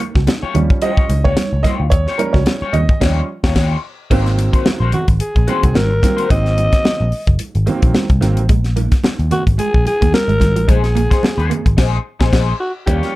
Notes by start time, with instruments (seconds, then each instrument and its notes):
0.00 muted clean electric guitar stroke, closed hi-hat, muted conga
0.15 picked electric bass C#2, clean electric guitar F#3, muted clean electric guitar stroke, kick, snare
0.27 muted clean electric guitar stroke, snare, closed hi-hat, high conga
0.43 clean electric guitar F4 G4 C#5, muted picked electric bass stroke
0.54 picked electric bass D#2, upright piano F3 G3 C#4, clean electric guitar G3, muted clean electric guitar stroke, closed hi-hat, low conga
0.70 muted clean electric guitar stroke, kick
0.82 clean electric guitar G3 F4 G4 C#5, upright piano D#5, closed hi-hat
0.97 kick
1.09 picked electric bass C#2, muted clean electric guitar stroke, closed hi-hat, muted conga
1.24 clean electric guitar A#3 F4 G4 C#5, upright piano C#5, kick
1.37 muted picked electric bass stroke, muted clean electric guitar stroke, snare, closed hi-hat, high conga
1.53 picked electric bass C#2, muted clean electric guitar stroke
1.63 clean electric guitar A#3 F4 G4, upright piano D#5, kick, snare, closed hi-hat, high conga
1.67 clean electric guitar C#5
1.80 picked electric bass D2, muted clean electric guitar stroke
1.90 picked electric bass D#2, upright piano C#5, muted clean electric guitar stroke, kick, closed hi-hat
2.07 clean electric guitar F4 G4 C#5, muted clean electric guitar stroke, snare
2.18 upright piano F3 G3 C#4 A#4, clean electric guitar A#3, muted clean electric guitar stroke, closed hi-hat, muted conga
2.33 picked electric bass C#2, clean electric guitar F#3, upright piano C#5, muted clean electric guitar stroke, kick, snare
2.46 muted clean electric guitar stroke, snare, closed hi-hat, high conga
2.62 clean electric guitar F4 G4 C#5, muted picked electric bass stroke
2.73 picked electric bass D#2, clean electric guitar G3, upright piano D#5, muted clean electric guitar stroke, closed hi-hat, low conga
2.89 muted clean electric guitar stroke, kick
3.00 picked electric bass D#2, upright piano F3 G3 C#4, clean electric guitar F4 G4 C#5, kick, snare, crash
3.44 picked electric bass D#2, clean electric guitar F4 G4 C#5, kick, snare
3.55 picked electric bass D#2, clean electric guitar F4 G4 C#5, kick, snare, crash
4.10 picked electric bass G#1, upright piano D#3 F#3 A#3 C4, clean electric guitar F#4 A#4 C5, kick, crash
4.26 muted clean electric guitar stroke, snare, closed hi-hat
4.38 muted clean electric guitar stroke, closed hi-hat, muted conga
4.53 clean electric guitar F#4 A#4 C5, kick, closed hi-hat
4.66 muted clean electric guitar stroke, snare, high conga
4.80 picked electric bass A#1, clean electric guitar F#4 A#4 C5
4.92 alto saxophone F#4, muted clean electric guitar stroke, closed hi-hat, low conga
5.08 picked electric bass G#1, muted clean electric guitar stroke, kick, closed hi-hat
5.20 alto saxophone G#4, muted picked electric bass stroke, closed hi-hat
5.36 picked electric bass A#1, muted clean electric guitar stroke, kick, closed hi-hat
5.47 upright piano D#3 F#3 A#3 C4, clean electric guitar F#4 A#4 C5, closed hi-hat, muted conga
5.63 picked electric bass C2, muted clean electric guitar stroke, kick, closed hi-hat
5.75 picked electric bass G#1, alto saxophone A#4, muted clean electric guitar stroke, snare, high conga
5.90 muted clean electric guitar stroke
6.02 upright piano D#3 F#3 A#3 C4, kick, snare, closed hi-hat, high conga
6.17 clean electric guitar F#4 A#4 C5, closed hi-hat
6.29 picked electric bass G#1, upright piano D#3 F#3 A#3 C4, alto saxophone D#5, kick, closed hi-hat
6.46 snare, closed hi-hat
6.58 closed hi-hat, muted conga
6.73 kick, snare, closed hi-hat
6.85 snare, high conga
7.01 picked electric bass A#1
7.12 open hi-hat
7.27 picked electric bass F#1, kick, closed hi-hat
7.39 muted picked electric bass stroke, closed hi-hat, muted conga
7.55 picked electric bass G#1, closed hi-hat
7.66 upright piano D#3 F#3 A#3 C4, closed hi-hat, muted conga, low conga
7.82 picked electric bass A#1, kick, closed hi-hat
7.94 snare, high conga
8.09 picked electric bass C2, kick, closed hi-hat
8.21 picked electric bass G#1, upright piano D#3 F#3 A#3 C4, snare, closed hi-hat, high conga
8.37 picked electric bass A1, closed hi-hat
8.49 picked electric bass A#1, clean electric guitar G#3, kick, closed hi-hat
8.64 snare, closed hi-hat
8.76 clean electric guitar A#3, closed hi-hat, muted conga
8.92 muted clean electric guitar stroke, kick, snare, closed hi-hat
9.03 snare, high conga
9.19 picked electric bass D#2, closed hi-hat
9.31 clean electric guitar A#3, alto saxophone F#4, closed hi-hat, low conga
9.47 picked electric bass G#1, kick, closed hi-hat
9.58 clean electric guitar G#3, alto saxophone G#4, muted picked electric bass stroke, closed hi-hat, muted conga
9.74 picked electric bass A#1, kick
9.85 alto saxophone G#4, muted clean electric guitar stroke, closed hi-hat, muted conga
10.01 picked electric bass D#2, clean electric guitar A#3, kick, closed hi-hat
10.13 alto saxophone A#4, snare, high conga
10.28 picked electric bass G#1, clean electric guitar G#3, closed hi-hat
10.40 picked electric bass G#1, muted clean electric guitar stroke, kick, snare, closed hi-hat, high conga
10.56 picked electric bass A1, clean electric guitar F3, closed hi-hat
10.67 picked electric bass A#1, clean electric guitar G#3 D#4 G#4 C5, alto saxophone G#4, kick, closed hi-hat
10.83 muted clean electric guitar stroke, snare, closed hi-hat
10.95 clean electric guitar A#3, muted clean electric guitar stroke, closed hi-hat, muted conga
11.10 clean electric guitar D#4 G#4 C5, muted clean electric guitar stroke, kick, snare, closed hi-hat
11.23 muted clean electric guitar stroke, snare, high conga
11.38 picked electric bass D#2, clean electric guitar D#4 G#4 C5, closed hi-hat
11.50 clean electric guitar A#3, muted clean electric guitar stroke, closed hi-hat, low conga
11.66 picked electric bass G#1, muted clean electric guitar stroke, kick, closed hi-hat
11.77 picked electric bass A#1, clean electric guitar D#4 G#4 C5, kick, snare, crash
12.20 picked electric bass A#1, clean electric guitar D#4 G#4 C5, kick, snare
12.32 picked electric bass A#1, clean electric guitar D#4 G#4 C5, kick, snare, crash
12.60 alto saxophone F#4
12.86 picked electric bass D#2, upright piano F3 G3 A#3 C#4, clean electric guitar F4 G4 C#5, alto saxophone G4, kick, closed hi-hat
13.03 muted clean electric guitar stroke, snare, closed hi-hat